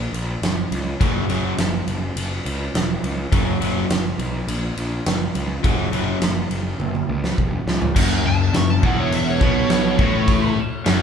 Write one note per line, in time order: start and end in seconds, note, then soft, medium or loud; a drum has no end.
0.13 0.35 A#1 medium
0.13 ride medium
0.42 0.64 F#1 medium
0.42 snare loud
0.42 ride medium
0.71 0.93 C#2 medium
0.71 ride medium
1.00 1.23 F#1 medium
1.00 1.24 F#2 medium
1.00 1.24 C#3 medium
1.00 1.24 F#3 loud
1.00 kick loud
1.00 ride medium
1.29 1.52 F#1 medium
1.29 1.53 F#2 medium
1.29 1.53 C#3 medium
1.29 1.53 F#3 loud
1.29 ride medium
1.58 1.80 F#1 medium
1.58 snare loud
1.58 ride medium
1.87 2.10 F#1 medium
1.87 ride medium
2.16 2.38 F#1 loud
2.16 ride medium
2.45 2.67 C#2 medium
2.45 ride medium
2.74 2.96 E1 medium
2.74 snare loud
2.74 ride medium
3.03 3.25 C#2 medium
3.03 ride medium
3.32 3.54 F#1 medium
3.32 3.56 F#2 loud
3.32 3.56 C#3 medium
3.32 3.56 F#3 loud
3.32 kick loud
3.32 ride medium
3.61 3.84 F#1 medium
3.61 3.84 F#2 medium
3.61 3.85 C#3 medium
3.61 3.85 F#3 loud
3.61 ride medium
3.90 4.12 F#1 medium
3.90 snare loud
3.90 ride medium
4.18 4.41 B1 medium
4.18 ride medium
4.48 4.70 A#1 loud
4.48 ride medium
4.77 4.99 A#1 medium
4.77 ride medium
5.06 5.28 F#1 medium
5.06 snare loud
5.06 ride medium
5.35 5.57 C#2 medium
5.35 ride medium
5.63 5.86 F#1 medium
5.63 5.87 F#2 medium
5.63 5.87 C#3 medium
5.63 5.88 F#3 loud
5.63 kick loud
5.63 ride medium
5.92 6.15 F#1 medium
5.92 6.16 F#2 medium
5.92 6.16 C#3 loud
5.92 6.17 F#3 loud
5.92 ride medium
6.21 6.44 F#1 medium
6.21 snare loud
6.21 ride medium
6.51 6.73 F#1 medium
6.51 ride medium
6.80 7.02 F#1 medium
6.80 high tom medium
6.95 high tom medium
7.09 7.31 C#2 medium
7.24 snare medium
7.38 7.60 E1 medium
7.38 kick medium
7.66 7.88 C#2 medium
7.66 snare medium
7.82 floor tom medium
7.96 8.23 F#1 loud
7.96 8.24 F#2 medium
7.96 kick loud
7.96 crash loud
7.96 crash medium
8.25 8.52 F#1 medium
8.25 8.48 F#2 medium
8.25 8.54 A5 loud
8.54 8.81 F#1 medium
8.54 8.77 F#2 medium
8.54 8.69 C#6 medium
8.54 snare loud
8.54 crash medium
8.70 8.86 A5 medium
8.83 9.37 E1 medium
8.83 9.40 E2 loud
8.83 8.98 F#5 medium
8.83 kick medium
9.00 9.13 C#5 medium
9.12 9.28 E5 medium
9.12 crash medium
9.29 9.42 C#5 loud
9.40 9.95 B1 medium
9.40 9.98 B2 loud
9.40 10.55 C#5 medium
9.40 kick loud
9.70 snare loud
9.70 crash medium
9.99 10.53 A1 medium
9.99 10.56 A2 medium
9.99 kick loud
10.28 kick loud
10.28 crash medium
10.56 muted overdriven electric guitar stroke medium
10.56 muted picked electric bass stroke soft
10.56 muted distorted electric guitar stroke medium
10.86 11.02 F#1 medium
10.86 11.02 F#2 loud
10.86 snare loud
10.86 crash medium